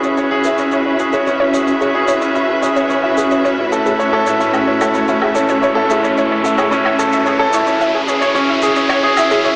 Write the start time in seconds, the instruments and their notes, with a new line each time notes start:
Already playing: grand piano C#4 E4 G#4 C#5, string section C#4 F#4 B4 E5, riser
0.03 synth arpeggio sound C#5, shaker
0.17 grand piano C#5, synth arpeggio sound C#5, shaker
0.31 grand piano G#4, synth arpeggio sound E5
0.44 grand piano E4, synth arpeggio sound G#4, shaker
0.58 grand piano C#4, synth arpeggio sound C#5, shaker
0.72 grand piano E4, synth arpeggio sound C#5, shaker
0.86 synth arpeggio sound C#5
0.99 grand piano G#4, synth arpeggio sound E5, shaker
1.13 synth arpeggio sound G#4, grand piano C#5, shaker
1.27 grand piano C#4, synth arpeggio sound C#5, shaker
1.40 grand piano E4, synth arpeggio sound C#5
1.54 grand piano G#4, synth arpeggio sound C#5, shaker
1.67 synth arpeggio sound E5, shaker
1.81 synth arpeggio sound G#4, grand piano C#5, shaker
1.95 grand piano G#4, synth arpeggio sound C#5
2.08 grand piano E4, synth arpeggio sound C#5, shaker
2.21 grand piano C#4, synth arpeggio sound C#5, shaker
2.35 grand piano E4, synth arpeggio sound E5, shaker
2.49 synth arpeggio sound G#4
2.62 grand piano G#4, synth arpeggio sound C#5, shaker
2.76 synth arpeggio sound C#5, grand piano C#5, shaker
2.90 grand piano C#4, synth arpeggio sound C#5, shaker
3.03 grand piano E4, synth arpeggio sound E5
3.17 grand piano G#4, synth arpeggio sound G#4, shaker
3.31 synth arpeggio sound C#5, shaker
3.44 string section A2, grand piano C#4, synth arpeggio sound C#5, shaker
3.58 grand piano E4, synth arpeggio sound C#5
3.72 grand piano A4, synth arpeggio sound E5, shaker
3.86 synth arpeggio sound G#4, shaker
3.99 synth arpeggio sound C#5, grand piano C#5, shaker
4.13 grand piano A4, synth arpeggio sound C#5
4.27 grand piano E4, synth arpeggio sound C#5, shaker
4.40 grand piano C#4, synth arpeggio sound E5, shaker
4.54 grand piano E4, synth arpeggio sound G#4, low woodblock, shaker
4.67 synth arpeggio sound C#5
4.81 grand piano A4, synth arpeggio sound C#5, low woodblock, shaker
4.94 grand piano C#5, synth arpeggio sound C#5, shaker
5.08 grand piano C#4, synth arpeggio sound E5, shaker
5.22 grand piano E4, synth arpeggio sound G#4, low woodblock
5.35 grand piano A4, synth arpeggio sound C#5, shaker
5.49 synth arpeggio sound C#5, shaker
5.62 grand piano C#5, synth arpeggio sound C#5, shaker
5.75 grand piano A4, synth arpeggio sound E5
5.90 grand piano E4, synth arpeggio sound G#4, shaker
6.03 grand piano C#4, synth arpeggio sound C#5, shaker
6.17 grand piano E4, synth arpeggio sound C#5, shaker
6.32 synth arpeggio sound C#5
6.44 grand piano A4, synth arpeggio sound E5, shaker
6.58 synth arpeggio sound G#4, grand piano C#5, low woodblock, shaker
6.71 grand piano C#4, synth arpeggio sound C#5, shaker
6.85 grand piano E4, synth arpeggio sound C#5, low woodblock
6.99 grand piano A4, synth arpeggio sound C#5, shaker
7.12 synth arpeggio sound E5, shaker
7.26 synth arpeggio sound G#4, grand piano C#5, shaker
7.39 grand piano A4, synth arpeggio sound C#5
7.53 grand piano E4, synth arpeggio sound C#5, shaker
7.66 grand piano C#4, synth arpeggio sound C#5, shaker
7.80 grand piano E4, synth arpeggio sound E5, shaker
7.95 synth arpeggio sound G#4
8.07 grand piano G#4, synth arpeggio sound C#5, shaker
8.21 grand piano C#5, synth arpeggio sound C#5, shaker
8.35 grand piano C#4, synth arpeggio sound C#5, shaker
8.49 grand piano E4, synth arpeggio sound E5
8.62 grand piano G#4, synth arpeggio sound G#4, shaker
8.76 synth arpeggio sound C#5, shaker
8.89 grand piano C#5, synth arpeggio sound C#5, low woodblock, shaker
9.03 grand piano G#4, synth arpeggio sound C#5
9.17 grand piano E4, synth arpeggio sound E5, low woodblock, shaker
9.31 grand piano C#4, synth arpeggio sound G#4, shaker
9.44 grand piano E4, synth arpeggio sound C#5, shaker